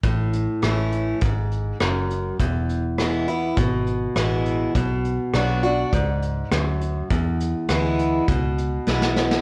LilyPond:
<<
  \new Staff \with { instrumentName = "Steel-string acoustic guitar" } { \clef bass \time 4/4 \key a \major \tempo 4 = 102 << { r4 <e a cis' e'>4 r2 | r4 <e gis b e'>8 <b e'>8 r4 <e gis b e'>4 | r4 <fis b d' fis'>8 <d' fis'>8 r2 | r4 <e gis b e'>4 r4 <e gis b e'>4 | } \\ { a,2 gis,4 fis,4 | e,2 b,2 | b,2 gis,4 fis,4 | e,2 b,2 | } >> }
  \new Staff \with { instrumentName = "Fingered electric bass" } { \clef bass \time 4/4 \key a \major a,,4 a,,4 gis,,4 fis,,4 | e,,2 gis,,4 a,,4 | b,,4 b,,4 cis,4 d,4 | e,4 d,4 cis,4 b,,4 | }
  \new DrumStaff \with { instrumentName = "Drums" } \drummode { \time 4/4 <hh bd>8 hh8 <hh ss>8 hh8 <hh bd>8 hh8 <hh ss>8 hh8 | <hh bd>8 hh8 <hh ss>8 hh8 <hh bd>8 hh8 <hh ss>8 hh8 | <hh bd>8 hh8 <hh ss>8 hh8 <hh bd>8 hh8 <hh ss>8 hh8 | <hh bd>8 hh8 <hh ss>8 hh8 <hh bd>8 hh8 sn16 sn16 sn16 sn16 | }
>>